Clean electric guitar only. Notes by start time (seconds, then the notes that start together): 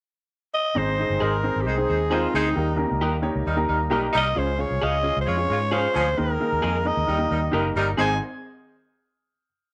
1.20 G#4 C5 D#5
2.11 G#4 C5 D#5
3.01 G4 A#4 D#5
3.91 G4 A#4 D#5
4.81 G#4 C#5 F5
5.72 G#4 C#5 F5
6.62 G#4 A#4 D#5
7.53 G4 A#4 D#5
7.97 G#4 C5 D#5